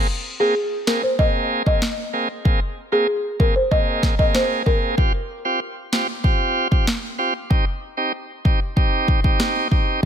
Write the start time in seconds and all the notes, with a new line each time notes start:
0.40 A#3 C4 G#4
0.87 A#3 C4 G#4 A#4, snare
1.03 C5
1.19 A#3 C4 G#4 D#5, kick
1.66 A#3 C4 G#4 D#5, kick
1.82 snare
2.13 A#3 C4 G#4
2.45 A#3 C4 G#4, kick
2.92 A#3 C4 G#4
3.40 A#3 C4 G#4 A#4, kick
3.56 C5
3.71 A#3 C4 G#4 D#5, kick
4.03 kick, snare
4.19 A#3 C4 G#4 D#5, kick
4.35 C5, snare
4.66 A#3 C4 G#4 A#4, kick
4.97 C4 F4 G4, kick
5.45 C4 F4 G4
5.92 C4 F4 G4, snare
6.24 C4 F4 G4, kick
6.71 C4 F4 G4, kick
6.87 snare
7.18 C4 F4 G4
7.50 C4 D#4 G4, kick
7.97 C4 D#4 G4
8.45 C4 D#4 G4, kick
8.76 C4 D#4 G4, kick
9.08 kick
9.24 C4 D#4 G4, kick
9.40 cross-stick, snare
9.71 C4 D#4 G4, kick